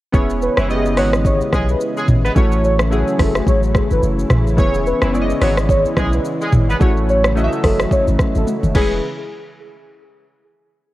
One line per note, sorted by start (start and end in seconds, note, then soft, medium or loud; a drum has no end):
0.12 0.49 E1 loud
0.12 2.34 C#3 medium
0.12 8.71 E3 medium
0.12 2.34 G#3 medium
0.12 0.56 B3 loud
0.12 2.34 B3 medium
0.12 0.56 C#4 medium
0.12 0.57 E4 medium
0.12 8.71 E4 medium
0.12 0.57 G#4 medium
0.12 0.57 C#5 loud
0.12 kick loud
0.12 shaker medium
0.30 shaker medium
0.42 0.56 B4 medium
0.42 shaker medium
0.57 0.99 F#1 medium
0.57 0.67 E3 medium
0.57 0.67 E4 medium
0.57 cross-stick loud
0.57 shaker soft
0.68 1.51 B3 medium
0.68 1.51 C#4 medium
0.68 1.51 E4 medium
0.68 0.77 G4 medium
0.68 1.52 D#5 loud
0.68 shaker medium
0.77 1.55 G#4 medium
0.86 shaker medium
0.97 1.41 G#1 medium
0.97 1.10 F#3 medium
0.97 1.10 F#4 medium
0.97 1.11 C#5 medium
0.97 cross-stick loud
0.97 open hi-hat medium
0.97 shaker medium
1.13 cross-stick loud
1.13 shaker medium
1.25 1.39 C#5 medium
1.25 kick loud
1.25 shaker medium
1.41 shaker medium
1.52 1.75 B1 medium
1.52 1.66 G#3 medium
1.52 1.66 G#4 medium
1.52 kick loud
1.52 cross-stick medium
1.52 shaker medium
1.68 1.79 B4 medium
1.68 shaker medium
1.80 shaker medium
1.96 2.06 G#3 medium
1.96 2.06 G#4 loud
1.96 shaker medium
2.08 2.30 G#1 loud
2.08 mid tom loud
2.08 shaker medium
2.24 2.31 B3 medium
2.24 2.31 B4 medium
2.24 shaker medium
2.35 3.04 A1 loud
2.35 6.76 C#3 medium
2.35 4.56 F#3 medium
2.35 2.78 A3 loud
2.35 4.56 A3 medium
2.35 2.79 C#4 medium
2.35 2.79 E4 medium
2.35 2.79 F#4 medium
2.35 2.80 C#5 loud
2.35 kick loud
2.35 shaker medium
2.52 shaker medium
2.64 2.78 C#5 medium
2.64 shaker medium
2.79 cross-stick loud
2.79 shaker soft
2.90 3.73 A3 medium
2.90 3.73 C#4 medium
2.90 3.74 E4 medium
2.90 3.74 F#4 medium
2.90 3.74 G#4 loud
2.90 shaker medium
3.08 shaker medium
3.20 3.42 F#1 medium
3.20 3.33 A4 medium
3.20 kick medium
3.20 cross-stick loud
3.20 open hi-hat medium
3.20 shaker medium
3.36 cross-stick loud
3.36 shaker medium
3.47 3.82 A1 loud
3.47 3.61 C#5 medium
3.47 kick loud
3.47 shaker medium
3.63 shaker medium
3.75 kick loud
3.75 cross-stick loud
3.75 shaker medium
3.91 4.00 G#1 loud
3.91 4.01 B4 medium
3.91 shaker medium
4.03 4.25 F#1 loud
4.03 shaker medium
4.19 shaker medium
4.30 4.60 A1 medium
4.30 cross-stick loud
4.30 mid tom loud
4.30 shaker medium
4.47 shaker medium
4.57 4.93 E1 loud
4.57 6.78 G#3 medium
4.57 5.01 B3 medium
4.57 6.78 B3 medium
4.57 5.01 C#4 medium
4.57 5.01 E4 medium
4.57 5.02 G#4 medium
4.57 5.02 C#5 loud
4.57 kick loud
4.57 shaker medium
4.74 shaker medium
4.86 5.00 B4 medium
4.86 shaker medium
5.02 5.34 F#1 medium
5.02 5.11 E3 medium
5.02 5.11 E4 medium
5.02 cross-stick loud
5.02 shaker soft
5.13 5.95 B3 medium
5.13 5.96 C#4 medium
5.13 5.96 E4 medium
5.13 5.96 G#4 medium
5.13 5.22 D5 medium
5.13 shaker medium
5.22 6.00 D#5 loud
5.30 shaker medium
5.41 5.86 G#1 loud
5.41 5.54 F#3 medium
5.41 5.54 F#4 medium
5.41 5.56 C#5 medium
5.41 cross-stick loud
5.41 open hi-hat medium
5.41 shaker medium
5.58 cross-stick loud
5.58 shaker medium
5.69 5.83 C#5 loud
5.69 kick medium
5.69 shaker medium
5.85 shaker medium
5.97 6.19 B1 medium
5.97 6.10 G#3 medium
5.97 6.10 G#4 medium
5.97 kick loud
5.97 cross-stick loud
5.97 shaker medium
6.13 6.23 B4 medium
6.13 shaker medium
6.25 shaker medium
6.41 6.50 G#3 medium
6.41 6.50 G#4 medium
6.41 shaker medium
6.52 6.75 G#1 loud
6.52 mid tom loud
6.52 shaker medium
6.69 6.76 B3 medium
6.69 6.76 B4 medium
6.69 shaker medium
6.79 7.49 A1 loud
6.79 8.73 C#3 medium
6.79 8.73 F#3 medium
6.79 7.23 A3 loud
6.79 8.73 A3 medium
6.79 7.23 C#4 medium
6.79 7.23 E4 medium
6.79 7.24 F#4 medium
6.79 7.24 C#5 loud
6.79 kick loud
6.79 shaker medium
6.97 shaker medium
7.09 7.22 C#5 medium
7.09 shaker medium
7.24 cross-stick loud
7.24 shaker soft
7.35 8.18 A3 loud
7.35 8.18 C#4 medium
7.35 8.18 E4 medium
7.35 8.18 F#4 medium
7.35 7.44 D#5 medium
7.35 shaker medium
7.44 8.22 E5 loud
7.52 shaker medium
7.64 7.86 F#1 loud
7.64 7.78 A4 medium
7.64 kick medium
7.64 cross-stick loud
7.64 open hi-hat medium
7.64 shaker medium
7.80 cross-stick loud
7.80 shaker medium
7.91 8.06 C#5 medium
7.91 kick loud
7.91 shaker medium
8.08 8.17 A1 loud
8.08 shaker medium
8.19 kick loud
8.19 cross-stick loud
8.19 shaker medium
8.35 8.45 G#1 medium
8.35 8.46 A4 medium
8.35 shaker medium
8.47 high tom medium
8.47 shaker medium
8.63 8.72 F#1 loud
8.63 mid tom medium
8.63 shaker medium
8.75 9.01 E1 loud
8.75 9.01 C#3 medium
8.75 8.94 E3 medium
8.75 9.01 E3 medium
8.75 9.01 G#3 medium
8.75 9.01 B3 medium
8.75 8.94 C#4 medium
8.75 9.01 C#4 medium
8.75 9.01 E4 medium
8.75 8.94 G#4 loud
8.75 9.01 G#4 medium
8.75 9.01 B4 loud
8.75 kick loud
8.75 crash medium